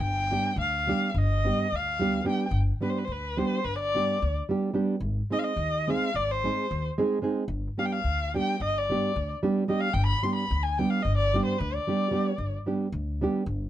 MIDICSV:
0, 0, Header, 1, 4, 480
1, 0, Start_track
1, 0, Time_signature, 9, 3, 24, 8
1, 0, Tempo, 556070
1, 5516, Tempo, 542495
1, 11978, End_track
2, 0, Start_track
2, 0, Title_t, "Erhu"
2, 0, Program_c, 0, 110
2, 0, Note_on_c, 0, 79, 114
2, 495, Note_off_c, 0, 79, 0
2, 527, Note_on_c, 0, 77, 95
2, 945, Note_off_c, 0, 77, 0
2, 945, Note_on_c, 0, 77, 56
2, 1020, Note_on_c, 0, 75, 92
2, 1033, Note_off_c, 0, 77, 0
2, 1513, Note_on_c, 0, 77, 93
2, 1526, Note_off_c, 0, 75, 0
2, 1966, Note_off_c, 0, 77, 0
2, 1976, Note_on_c, 0, 79, 76
2, 2166, Note_off_c, 0, 79, 0
2, 2439, Note_on_c, 0, 71, 70
2, 2502, Note_on_c, 0, 72, 60
2, 2515, Note_off_c, 0, 71, 0
2, 2577, Note_on_c, 0, 71, 56
2, 2590, Note_off_c, 0, 72, 0
2, 2628, Note_on_c, 0, 72, 74
2, 2641, Note_off_c, 0, 71, 0
2, 2693, Note_on_c, 0, 71, 76
2, 2706, Note_off_c, 0, 72, 0
2, 2917, Note_on_c, 0, 72, 86
2, 2930, Note_off_c, 0, 71, 0
2, 3147, Note_on_c, 0, 71, 96
2, 3160, Note_off_c, 0, 72, 0
2, 3265, Note_off_c, 0, 71, 0
2, 3270, Note_on_c, 0, 74, 102
2, 3727, Note_off_c, 0, 74, 0
2, 4598, Note_on_c, 0, 75, 90
2, 4650, Note_on_c, 0, 77, 74
2, 4663, Note_off_c, 0, 75, 0
2, 4695, Note_on_c, 0, 75, 83
2, 4708, Note_off_c, 0, 77, 0
2, 5088, Note_on_c, 0, 77, 96
2, 5101, Note_off_c, 0, 75, 0
2, 5313, Note_on_c, 0, 74, 93
2, 5326, Note_off_c, 0, 77, 0
2, 5446, Note_on_c, 0, 72, 100
2, 5459, Note_off_c, 0, 74, 0
2, 5928, Note_off_c, 0, 72, 0
2, 6753, Note_on_c, 0, 77, 76
2, 6812, Note_on_c, 0, 79, 74
2, 6826, Note_off_c, 0, 77, 0
2, 6874, Note_on_c, 0, 77, 89
2, 6888, Note_off_c, 0, 79, 0
2, 7256, Note_off_c, 0, 77, 0
2, 7268, Note_on_c, 0, 79, 96
2, 7469, Note_off_c, 0, 79, 0
2, 7507, Note_on_c, 0, 75, 100
2, 7629, Note_on_c, 0, 74, 94
2, 7642, Note_off_c, 0, 75, 0
2, 8105, Note_off_c, 0, 74, 0
2, 8435, Note_on_c, 0, 75, 78
2, 8539, Note_on_c, 0, 77, 92
2, 8552, Note_off_c, 0, 75, 0
2, 8651, Note_on_c, 0, 79, 102
2, 8664, Note_off_c, 0, 77, 0
2, 8765, Note_off_c, 0, 79, 0
2, 8770, Note_on_c, 0, 83, 105
2, 8914, Note_on_c, 0, 84, 87
2, 8927, Note_off_c, 0, 83, 0
2, 9023, Note_off_c, 0, 84, 0
2, 9029, Note_on_c, 0, 83, 88
2, 9265, Note_on_c, 0, 80, 80
2, 9278, Note_off_c, 0, 83, 0
2, 9403, Note_on_c, 0, 79, 80
2, 9416, Note_off_c, 0, 80, 0
2, 9506, Note_on_c, 0, 77, 80
2, 9519, Note_off_c, 0, 79, 0
2, 9618, Note_on_c, 0, 75, 89
2, 9631, Note_off_c, 0, 77, 0
2, 9746, Note_off_c, 0, 75, 0
2, 9751, Note_on_c, 0, 74, 97
2, 9989, Note_off_c, 0, 74, 0
2, 9999, Note_on_c, 0, 72, 89
2, 10123, Note_on_c, 0, 71, 85
2, 10136, Note_off_c, 0, 72, 0
2, 10254, Note_on_c, 0, 74, 86
2, 10268, Note_off_c, 0, 71, 0
2, 10940, Note_off_c, 0, 74, 0
2, 11978, End_track
3, 0, Start_track
3, 0, Title_t, "Nylon-string guitar"
3, 0, Program_c, 1, 24
3, 268, Note_on_c, 1, 55, 45
3, 271, Note_on_c, 1, 59, 47
3, 275, Note_on_c, 1, 62, 54
3, 278, Note_on_c, 1, 67, 65
3, 448, Note_off_c, 1, 55, 0
3, 448, Note_off_c, 1, 59, 0
3, 451, Note_off_c, 1, 62, 0
3, 452, Note_off_c, 1, 67, 0
3, 751, Note_on_c, 1, 55, 66
3, 758, Note_on_c, 1, 59, 60
3, 765, Note_on_c, 1, 62, 56
3, 770, Note_on_c, 1, 67, 78
3, 937, Note_off_c, 1, 55, 0
3, 941, Note_off_c, 1, 59, 0
3, 944, Note_off_c, 1, 62, 0
3, 947, Note_off_c, 1, 67, 0
3, 1246, Note_on_c, 1, 55, 60
3, 1250, Note_on_c, 1, 59, 55
3, 1254, Note_on_c, 1, 62, 50
3, 1263, Note_on_c, 1, 67, 64
3, 1433, Note_off_c, 1, 55, 0
3, 1435, Note_off_c, 1, 59, 0
3, 1437, Note_off_c, 1, 62, 0
3, 1442, Note_off_c, 1, 67, 0
3, 1720, Note_on_c, 1, 55, 66
3, 1731, Note_on_c, 1, 59, 60
3, 1733, Note_on_c, 1, 62, 57
3, 1740, Note_on_c, 1, 67, 63
3, 1901, Note_off_c, 1, 55, 0
3, 1906, Note_off_c, 1, 59, 0
3, 1908, Note_off_c, 1, 62, 0
3, 1909, Note_off_c, 1, 67, 0
3, 1934, Note_on_c, 1, 55, 61
3, 1942, Note_on_c, 1, 59, 61
3, 1950, Note_on_c, 1, 62, 63
3, 1952, Note_on_c, 1, 67, 71
3, 2116, Note_off_c, 1, 55, 0
3, 2120, Note_off_c, 1, 59, 0
3, 2124, Note_off_c, 1, 62, 0
3, 2124, Note_off_c, 1, 67, 0
3, 2422, Note_on_c, 1, 55, 50
3, 2428, Note_on_c, 1, 59, 50
3, 2434, Note_on_c, 1, 62, 44
3, 2440, Note_on_c, 1, 67, 49
3, 2609, Note_off_c, 1, 55, 0
3, 2612, Note_off_c, 1, 59, 0
3, 2614, Note_off_c, 1, 62, 0
3, 2618, Note_off_c, 1, 67, 0
3, 2910, Note_on_c, 1, 55, 60
3, 2914, Note_on_c, 1, 59, 56
3, 2920, Note_on_c, 1, 62, 53
3, 2924, Note_on_c, 1, 67, 64
3, 3099, Note_off_c, 1, 55, 0
3, 3100, Note_off_c, 1, 59, 0
3, 3104, Note_off_c, 1, 62, 0
3, 3106, Note_off_c, 1, 67, 0
3, 3405, Note_on_c, 1, 55, 53
3, 3409, Note_on_c, 1, 59, 52
3, 3414, Note_on_c, 1, 62, 46
3, 3421, Note_on_c, 1, 67, 64
3, 3593, Note_off_c, 1, 55, 0
3, 3595, Note_off_c, 1, 59, 0
3, 3597, Note_off_c, 1, 62, 0
3, 3601, Note_off_c, 1, 67, 0
3, 3875, Note_on_c, 1, 55, 65
3, 3884, Note_on_c, 1, 59, 59
3, 3888, Note_on_c, 1, 62, 76
3, 3893, Note_on_c, 1, 67, 72
3, 4057, Note_off_c, 1, 55, 0
3, 4061, Note_off_c, 1, 59, 0
3, 4063, Note_off_c, 1, 62, 0
3, 4065, Note_off_c, 1, 67, 0
3, 4087, Note_on_c, 1, 55, 70
3, 4091, Note_on_c, 1, 59, 70
3, 4096, Note_on_c, 1, 62, 70
3, 4103, Note_on_c, 1, 67, 82
3, 4270, Note_off_c, 1, 55, 0
3, 4272, Note_off_c, 1, 59, 0
3, 4273, Note_off_c, 1, 62, 0
3, 4278, Note_off_c, 1, 67, 0
3, 4579, Note_on_c, 1, 56, 55
3, 4584, Note_on_c, 1, 60, 51
3, 4587, Note_on_c, 1, 63, 50
3, 4592, Note_on_c, 1, 68, 65
3, 4762, Note_off_c, 1, 56, 0
3, 4764, Note_off_c, 1, 60, 0
3, 4767, Note_off_c, 1, 63, 0
3, 4769, Note_off_c, 1, 68, 0
3, 5071, Note_on_c, 1, 56, 58
3, 5076, Note_on_c, 1, 60, 57
3, 5083, Note_on_c, 1, 63, 52
3, 5088, Note_on_c, 1, 68, 61
3, 5252, Note_off_c, 1, 56, 0
3, 5256, Note_off_c, 1, 60, 0
3, 5257, Note_off_c, 1, 63, 0
3, 5261, Note_off_c, 1, 68, 0
3, 5559, Note_on_c, 1, 56, 58
3, 5568, Note_on_c, 1, 60, 53
3, 5569, Note_on_c, 1, 63, 55
3, 5573, Note_on_c, 1, 68, 63
3, 5745, Note_off_c, 1, 56, 0
3, 5749, Note_off_c, 1, 63, 0
3, 5750, Note_off_c, 1, 60, 0
3, 5752, Note_off_c, 1, 68, 0
3, 6038, Note_on_c, 1, 56, 86
3, 6043, Note_on_c, 1, 60, 69
3, 6049, Note_on_c, 1, 63, 64
3, 6051, Note_on_c, 1, 68, 86
3, 6217, Note_off_c, 1, 56, 0
3, 6220, Note_off_c, 1, 60, 0
3, 6221, Note_off_c, 1, 63, 0
3, 6224, Note_off_c, 1, 68, 0
3, 6250, Note_on_c, 1, 56, 70
3, 6257, Note_on_c, 1, 60, 65
3, 6261, Note_on_c, 1, 63, 65
3, 6266, Note_on_c, 1, 68, 84
3, 6432, Note_off_c, 1, 56, 0
3, 6435, Note_off_c, 1, 60, 0
3, 6437, Note_off_c, 1, 63, 0
3, 6440, Note_off_c, 1, 68, 0
3, 6742, Note_on_c, 1, 55, 52
3, 6747, Note_on_c, 1, 59, 49
3, 6751, Note_on_c, 1, 62, 53
3, 6755, Note_on_c, 1, 67, 59
3, 6928, Note_off_c, 1, 55, 0
3, 6931, Note_off_c, 1, 59, 0
3, 6933, Note_off_c, 1, 62, 0
3, 6935, Note_off_c, 1, 67, 0
3, 7242, Note_on_c, 1, 55, 51
3, 7247, Note_on_c, 1, 59, 55
3, 7250, Note_on_c, 1, 62, 59
3, 7259, Note_on_c, 1, 67, 67
3, 7426, Note_off_c, 1, 55, 0
3, 7429, Note_off_c, 1, 59, 0
3, 7430, Note_off_c, 1, 62, 0
3, 7434, Note_off_c, 1, 67, 0
3, 7732, Note_on_c, 1, 55, 56
3, 7740, Note_on_c, 1, 59, 53
3, 7745, Note_on_c, 1, 62, 46
3, 7752, Note_on_c, 1, 67, 75
3, 7919, Note_off_c, 1, 55, 0
3, 7922, Note_off_c, 1, 59, 0
3, 7925, Note_off_c, 1, 62, 0
3, 7929, Note_off_c, 1, 67, 0
3, 8204, Note_on_c, 1, 55, 88
3, 8207, Note_on_c, 1, 59, 68
3, 8216, Note_on_c, 1, 62, 65
3, 8220, Note_on_c, 1, 67, 73
3, 8385, Note_off_c, 1, 55, 0
3, 8386, Note_off_c, 1, 59, 0
3, 8391, Note_off_c, 1, 62, 0
3, 8393, Note_off_c, 1, 67, 0
3, 8427, Note_on_c, 1, 55, 62
3, 8432, Note_on_c, 1, 59, 56
3, 8437, Note_on_c, 1, 62, 61
3, 8442, Note_on_c, 1, 67, 82
3, 8604, Note_off_c, 1, 55, 0
3, 8606, Note_off_c, 1, 59, 0
3, 8609, Note_off_c, 1, 62, 0
3, 8612, Note_off_c, 1, 67, 0
3, 8910, Note_on_c, 1, 55, 56
3, 8917, Note_on_c, 1, 59, 52
3, 8924, Note_on_c, 1, 62, 51
3, 8929, Note_on_c, 1, 67, 55
3, 9094, Note_off_c, 1, 55, 0
3, 9098, Note_off_c, 1, 59, 0
3, 9101, Note_off_c, 1, 62, 0
3, 9103, Note_off_c, 1, 67, 0
3, 9408, Note_on_c, 1, 55, 69
3, 9412, Note_on_c, 1, 59, 61
3, 9421, Note_on_c, 1, 62, 54
3, 9427, Note_on_c, 1, 67, 67
3, 9589, Note_off_c, 1, 55, 0
3, 9591, Note_off_c, 1, 59, 0
3, 9595, Note_off_c, 1, 62, 0
3, 9599, Note_off_c, 1, 67, 0
3, 9895, Note_on_c, 1, 55, 62
3, 9902, Note_on_c, 1, 59, 62
3, 9910, Note_on_c, 1, 62, 55
3, 9914, Note_on_c, 1, 67, 70
3, 10078, Note_off_c, 1, 55, 0
3, 10083, Note_off_c, 1, 59, 0
3, 10084, Note_off_c, 1, 62, 0
3, 10088, Note_off_c, 1, 67, 0
3, 10368, Note_on_c, 1, 55, 61
3, 10377, Note_on_c, 1, 59, 57
3, 10379, Note_on_c, 1, 62, 59
3, 10385, Note_on_c, 1, 67, 66
3, 10543, Note_off_c, 1, 55, 0
3, 10548, Note_off_c, 1, 59, 0
3, 10548, Note_off_c, 1, 62, 0
3, 10552, Note_off_c, 1, 67, 0
3, 10578, Note_on_c, 1, 55, 63
3, 10585, Note_on_c, 1, 59, 55
3, 10590, Note_on_c, 1, 62, 59
3, 10599, Note_on_c, 1, 67, 73
3, 10755, Note_off_c, 1, 55, 0
3, 10759, Note_off_c, 1, 59, 0
3, 10761, Note_off_c, 1, 62, 0
3, 10766, Note_off_c, 1, 67, 0
3, 11065, Note_on_c, 1, 55, 59
3, 11068, Note_on_c, 1, 59, 57
3, 11074, Note_on_c, 1, 62, 56
3, 11079, Note_on_c, 1, 67, 58
3, 11246, Note_off_c, 1, 55, 0
3, 11247, Note_off_c, 1, 59, 0
3, 11250, Note_off_c, 1, 62, 0
3, 11253, Note_off_c, 1, 67, 0
3, 11553, Note_on_c, 1, 55, 75
3, 11560, Note_on_c, 1, 59, 65
3, 11567, Note_on_c, 1, 62, 64
3, 11574, Note_on_c, 1, 67, 85
3, 11734, Note_off_c, 1, 55, 0
3, 11737, Note_off_c, 1, 59, 0
3, 11741, Note_off_c, 1, 62, 0
3, 11744, Note_off_c, 1, 67, 0
3, 11978, End_track
4, 0, Start_track
4, 0, Title_t, "Upright bass"
4, 0, Program_c, 2, 32
4, 0, Note_on_c, 2, 31, 94
4, 293, Note_off_c, 2, 31, 0
4, 485, Note_on_c, 2, 38, 89
4, 786, Note_off_c, 2, 38, 0
4, 988, Note_on_c, 2, 31, 96
4, 1286, Note_off_c, 2, 31, 0
4, 1486, Note_on_c, 2, 38, 70
4, 1896, Note_off_c, 2, 38, 0
4, 2167, Note_on_c, 2, 31, 92
4, 2330, Note_off_c, 2, 31, 0
4, 2654, Note_on_c, 2, 38, 78
4, 2952, Note_off_c, 2, 38, 0
4, 3147, Note_on_c, 2, 31, 73
4, 3445, Note_off_c, 2, 31, 0
4, 3644, Note_on_c, 2, 38, 85
4, 3794, Note_off_c, 2, 38, 0
4, 4319, Note_on_c, 2, 32, 87
4, 4482, Note_off_c, 2, 32, 0
4, 4803, Note_on_c, 2, 39, 84
4, 5100, Note_off_c, 2, 39, 0
4, 5303, Note_on_c, 2, 32, 67
4, 5598, Note_off_c, 2, 32, 0
4, 5797, Note_on_c, 2, 39, 82
4, 5948, Note_off_c, 2, 39, 0
4, 6479, Note_on_c, 2, 31, 92
4, 6644, Note_off_c, 2, 31, 0
4, 6977, Note_on_c, 2, 38, 77
4, 7275, Note_off_c, 2, 38, 0
4, 7473, Note_on_c, 2, 31, 74
4, 7771, Note_off_c, 2, 31, 0
4, 7966, Note_on_c, 2, 38, 90
4, 8117, Note_off_c, 2, 38, 0
4, 8655, Note_on_c, 2, 31, 103
4, 8816, Note_off_c, 2, 31, 0
4, 9158, Note_on_c, 2, 38, 87
4, 9450, Note_off_c, 2, 38, 0
4, 9637, Note_on_c, 2, 31, 80
4, 9932, Note_off_c, 2, 31, 0
4, 10129, Note_on_c, 2, 38, 96
4, 10277, Note_off_c, 2, 38, 0
4, 10817, Note_on_c, 2, 31, 83
4, 10975, Note_off_c, 2, 31, 0
4, 11297, Note_on_c, 2, 38, 89
4, 11589, Note_off_c, 2, 38, 0
4, 11774, Note_on_c, 2, 31, 91
4, 11978, Note_off_c, 2, 31, 0
4, 11978, End_track
0, 0, End_of_file